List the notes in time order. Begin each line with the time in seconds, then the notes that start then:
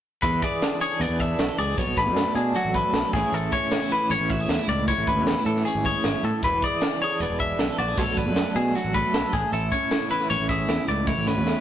0.22 E2 E3 B4, kick, closed hi-hat
0.42 G#4 D5, kick, closed hi-hat
0.62 D4, snare, closed hi-hat
0.81 G#4 C#5, closed hi-hat
1.00 E2 B3 D5, closed hi-hat
1.09 E2
1.20 D4 E5, kick, closed hi-hat
1.38 B1 F#4, snare, closed hi-hat
1.49 A4
1.58 C#2 G#4 D5, closed hi-hat
1.77 B1 B2 C#5, kick, closed hi-hat
1.87 B1
1.97 A1 D4 B4, kick, closed hi-hat
2.06 F#2
2.16 A3, snare, closed hi-hat
2.35 B2 D4 G#4, closed hi-hat
2.55 F#3 F#4, closed hi-hat
2.65 A1
2.74 A3 B4, kick, closed hi-hat
2.93 B1 A4, snare, closed hi-hat
3.13 A1 A2 E3 C#4 E4 G#4, kick, closed hi-hat
3.18 G#4
3.32 A1 E4 A4, closed hi-hat
3.52 C#4 C#5, kick, closed hi-hat
3.71 C#4, snare, closed hi-hat
3.81 E4
3.91 E3 B4, closed hi-hat
4.10 A1 C#4 C#5, closed hi-hat
4.20 A1
4.30 F#4 E5, kick, closed hi-hat
4.40 G#4
4.48 E2 C#4, snare, closed hi-hat
4.59 E4
4.68 C#2 A2 D5, closed hi-hat
4.88 E4 C#5, kick, closed hi-hat
4.97 A1
5.07 G#1 C#4 B4, kick, closed hi-hat
5.16 E2
5.27 C#4, snare, closed hi-hat
5.39 E4
5.45 A2 E3 A4, closed hi-hat
5.56 snare
5.65 C#4 G#4, closed hi-hat
5.75 G#1
5.85 G#4 C#5, kick, closed hi-hat
6.04 G#1 E4, snare, closed hi-hat
6.23 A2 A4, closed hi-hat
6.42 E1 E3 B4, kick, closed hi-hat
6.62 G#4 D5, kick, closed hi-hat
6.81 D4, snare, closed hi-hat
7.01 G#4 C#5, closed hi-hat
7.20 E1 B3 D5, closed hi-hat
7.30 E1
7.40 D4 E5, kick, closed hi-hat
7.59 B1 A4, snare, closed hi-hat
7.78 A#1 F#4 D5, closed hi-hat
7.88 G#4
7.97 B1 B2 F#3 A3 D4 C#5, kick, closed hi-hat
8.02 A4
8.07 B1
8.17 A1 D4 B4, kick, closed hi-hat
8.26 F#2
8.36 A3, snare, closed hi-hat
8.55 B2 D4 G#4, closed hi-hat
8.75 F#3 F#4, closed hi-hat
8.84 A1
8.94 A3 B4, kick, closed hi-hat
9.14 B1 A4, snare, closed hi-hat
9.32 A1 A2 G#4, kick, closed hi-hat
9.52 A1 E4 A4, closed hi-hat
9.72 C#4 C#5, kick, closed hi-hat
9.91 E4, snare, closed hi-hat
10.10 E3 B4, closed hi-hat
10.20 snare
10.29 A1 C#4 C#5, closed hi-hat
10.40 A1
10.49 G#4 E5, kick, closed hi-hat
10.68 E2 E4, snare, closed hi-hat
10.88 C#2 A2 D5, closed hi-hat
11.07 E4 C#5, kick, high tom
11.17 A1
11.27 G#1 C#4 B4, snare
11.37 E2
11.47 E4, snare